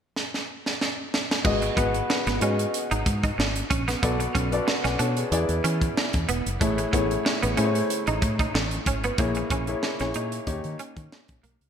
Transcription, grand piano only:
1.44 B3 F#4 G#4 D#5
1.76 B3 F#4 G#4 B4
2.40 B3 F#4 G#4 D#5
4.03 B3 F#4 A4 D5
4.52 B3 F#4 A4 D5
4.67 D5 F#5
4.84 B4 D5
4.99 A4 C#5
5.17 G#4 B4
5.31 B3 E4 G#4 D5
6.60 A3 E4 G#4 C#5
6.93 A3 E4 G#4 C#5
7.56 A3 E4 G#4 C5
7.64 C#5
9.18 A#3 E4 G#4 C#5
9.68 A#3 E4 G#4 C#5
10.00 A#3 E4 G#4 C#5
10.46 A#3 D#4 G4 C#5

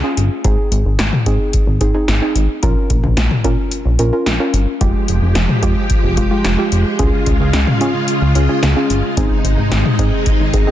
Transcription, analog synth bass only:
0.17 G1
0.45 G#1
0.72 G#1
0.85 G#1
0.99 G#1
1.26 G#2
1.67 G#1
1.81 G#1
2.08 G#1
2.35 G#1
2.63 A#1
2.90 A#1
3.04 A#1
3.17 A#1
3.44 A#2
3.85 A#1
3.99 A#1
4.26 A#1
4.54 G1
4.81 F1
5.08 F1
5.22 F1
5.35 F1
5.62 F2
6.04 F1
6.17 F1
6.45 F1
6.72 F1
6.99 C#2
7.27 C#2
7.40 C#2
7.54 C#2
7.81 C#3
8.22 C#2
8.35 C#2
8.63 C#2
8.90 G1
9.17 G#1
9.44 G#1
9.58 G#1
9.72 G#1
9.99 G#2
10.40 G#1
10.53 G#1

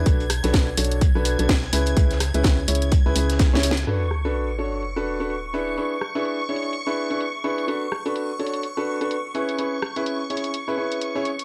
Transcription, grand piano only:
0.06 D4 F#4 A4 B4
0.44 D4 F#4 A4 B4
0.78 D4 F#4 A4 C#5
1.15 D4 F#4 A4 B4
1.39 D4 F#4 A4 B4
1.73 C#4 E4 G#4 B4
1.97 C#4 E4 G#4 B4
2.34 C#4 E4 G#4 B4
2.68 C#4 E4 G#4 C#5
3.06 C#4 E4 G#4 B4
3.16 C#4 E4 G#4 B4
3.53 C#4 E4 G#4 C#5
3.87 D4 F#4 A4 B4
4.25 D4 F#4 A4 B4
4.59 D4 F#4 A4 C#5
4.96 D4 F#4 A4 B4
5.20 D4 F#4 A4 B4
5.54 D4 E4 G#4 B4
5.77 D4 E4 G#4 B4
6.15 D4 E4 G#4 B4
6.49 D4 E4 G#4 C#5
6.87 D4 E4 G#4 B4
7.10 D4 E4 G#4 B4
7.44 D4 E4 G#4 B4
7.68 D4 F#4 A4 B4
8.06 D4 F#4 A4 B4
8.39 D4 F#4 A4 C#5
8.77 D4 F#4 A4 B4
9.01 D4 F#4 A4 B4
9.35 C#4 E4 G#4 B4
9.58 C#4 E4 G#4 B4
9.96 C#4 E4 G#4 B4
10.30 C#4 E4 G#4 C#5
10.68 C#4 E4 G#4 B4
10.78 C#4 E4 G#4 B4
11.15 C#4 E4 G#4 C#5

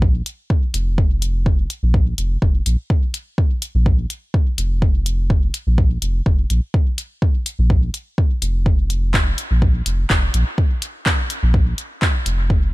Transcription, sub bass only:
Already playing: A#1
0.74 F1
1.83 A#1
2.18 F1
2.42 F1
2.66 A#1
3.75 A#1
4.58 F1
5.67 A#1
6.02 F1
6.26 F1
6.50 A#1
7.59 A#1
8.42 F1
9.51 A#1
9.86 F1
10.10 F1
10.34 A#1
11.43 A#1
12.26 F1

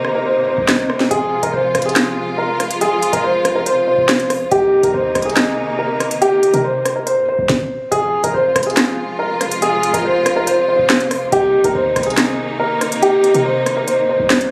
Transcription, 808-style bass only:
Already playing: C3
0.37 G2
0.58 C2
1.11 F1
1.32 D#1
1.43 F1
1.54 F1
1.75 F1
3.13 F1
3.45 C2
3.98 F1
4.41 F2
4.51 C2
4.83 C2
4.94 D#2
5.15 C2
6.54 C3
7.17 G2
7.39 C2
7.92 F1
8.13 D#1
8.24 F1
8.34 F1
8.56 F1
9.94 F1
10.26 C2
10.79 F1
11.22 F2
11.32 C2
11.64 C2
11.75 D#2
11.96 C2
13.34 C3
13.98 G2
14.20 C2

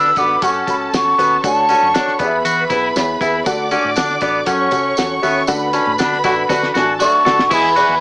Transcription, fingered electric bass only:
Already playing: D3
0.17 A1
0.42 F#2
0.67 C#2
0.93 E2
1.18 D#2
1.44 D2
1.82 F#2
2.07 muted fingered electric bass stroke
2.20 E2
2.45 E3
2.70 B1
2.95 E2
3.21 D#2
3.46 D2
3.85 A2
3.97 D3
4.22 A1
4.47 F#2
4.72 C#2
4.98 E2
5.24 D#2
5.49 D2
5.87 A2
6.00 D3
6.24 A1
6.49 D3
6.75 A1
7.26 C#2
7.38 B1
7.51 E2
7.89 E2

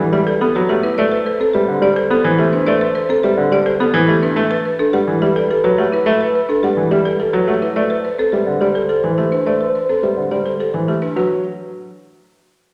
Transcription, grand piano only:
0.00 E3
0.13 G3
0.41 B3
0.56 F#3
0.69 A3
0.98 A3
1.55 G3
1.68 D3
1.82 G3
2.10 B3
2.24 E3
2.39 A3
2.67 A3
3.24 G3
3.38 D3
3.51 G3
3.80 B3
3.94 E3
4.08 A3
4.36 A3
4.93 G3
5.07 E3
5.22 G3
5.64 F#3
5.78 A3
6.06 A3
6.63 G3
6.77 E3
6.91 G3
7.33 F#3
7.47 A3
7.76 A3
8.33 G3
8.47 D3
8.61 G3
9.04 E3
9.18 A3
9.46 A3
10.03 G3
10.17 D3
10.31 G3
10.74 E3
10.88 A3
11.16 F#3

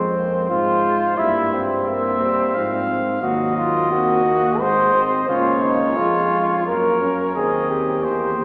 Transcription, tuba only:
Already playing: F2
0.50 G#2
1.19 G2
2.55 G#2
3.23 D#2
4.61 G#1
5.29 C#2
5.98 F2
6.68 F#2
7.36 D#2
8.04 E2

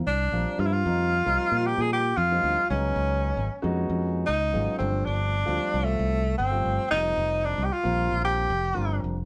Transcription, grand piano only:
0.33 F3 G3 A#3 C4 F4
0.85 F3 G3 A#3 C4 D#4
1.25 F3 G3 A#3 C4 D#4
2.31 F3 G3 A#3 C4 D#4
2.71 F#3 G#3 B3 C#4 D#4
3.62 G#3 B3 C#4 D#4 F#4
4.53 F#3 G#3 B3 C#4 F4
4.79 F3 G3 A3 C4 D4
5.45 F3 G3 A3 C4 F4
6.51 F3 G3 A3 C4 F4
6.91 F3 G3 A#3 C4 D#4
7.83 F3 G3 A#3 C4 F4
8.74 F3 G3 A#3 C4 D4

